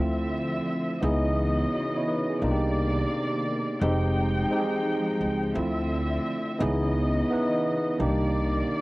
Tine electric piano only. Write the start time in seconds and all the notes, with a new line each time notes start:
Already playing: A3 C4 E4
0.00 F4
1.02 B3 D#4 E4 G#4
1.73 F#4 D#5
1.96 E4 C#5
2.08 D#4 B4
2.30 B3 G#4
2.42 A#3 D4 D#4 F4
2.51 G4
3.82 G#3 C4 D#4 G4
4.50 G#3 C4 D#4 G4
4.60 G#4
5.55 A3 C4 E4 F4
6.59 B3 D#4 E4 G#4
7.30 B3 D#4 E4 B4
7.98 A#3 D4 D#4 G4